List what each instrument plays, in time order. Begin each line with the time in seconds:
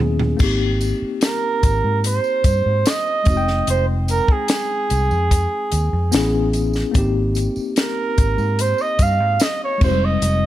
Already playing: tine electric piano B3 C#4 E4 G#4
0.00 fingered electric bass D#2
0.19 floor tom
0.37 fingered electric bass G#1, tine electric piano A#3 C4, kick, crash, tambourine
0.41 tine electric piano D#4 G4
0.81 closed hi-hat, tambourine
1.02 muted fingered electric bass stroke
1.21 flugelhorn A#4, snare, closed hi-hat, tambourine
1.63 fingered electric bass G#1, kick, closed hi-hat, tambourine
1.84 fingered electric bass G#2
2.04 flugelhorn C5, closed hi-hat, tambourine
2.24 tambourine
2.44 fingered electric bass G2, kick, closed hi-hat, tambourine
2.66 fingered electric bass G#2
2.86 flugelhorn D#5, snare, closed hi-hat, tambourine
3.24 fingered electric bass F1, tine electric piano G#3 C4, kick, closed hi-hat
3.28 tine electric piano D#4 F#4, tambourine
3.37 tine electric piano G5
3.48 snare
3.67 fingered electric bass F1, flugelhorn C5, closed hi-hat, tambourine
4.08 flugelhorn A#4, closed hi-hat, tambourine
4.28 flugelhorn G#4, kick
4.48 snare, closed hi-hat, tambourine
4.90 fingered electric bass C2, closed hi-hat, tambourine
5.11 fingered electric bass F2, tambourine
5.31 kick, closed hi-hat, tambourine
5.72 fingered electric bass D#2, closed hi-hat, tambourine
5.93 fingered electric bass F2
6.12 fingered electric bass A1, tine electric piano B3 C#4 E4 G#4, snare, closed hi-hat, tambourine
6.53 closed hi-hat, tambourine
6.73 snare, tambourine
6.91 fingered electric bass G#1, tine electric piano A#3 C4, kick, closed hi-hat, tambourine
6.96 tine electric piano D#4 G4
7.35 closed hi-hat, tambourine
7.56 muted fingered electric bass stroke, tambourine
7.76 flugelhorn A#4, snare, closed hi-hat, tambourine
8.18 fingered electric bass G#1, kick, closed hi-hat, tambourine
8.38 fingered electric bass G#2, tambourine
8.59 flugelhorn C5, closed hi-hat, tambourine
8.78 flugelhorn D#5, tambourine
8.99 fingered electric bass G2, flugelhorn F5, kick, closed hi-hat, tambourine
9.20 fingered electric bass G#2
9.40 flugelhorn D#5, snare, closed hi-hat, tambourine
9.64 flugelhorn C#5
9.78 fingered electric bass F1, tine electric piano G#3 C4, kick, crash
9.82 tine electric piano D#4 F#4, flugelhorn C5, tambourine
9.92 tine electric piano G3
10.05 flugelhorn D#5
10.22 fingered electric bass F1, closed hi-hat, tambourine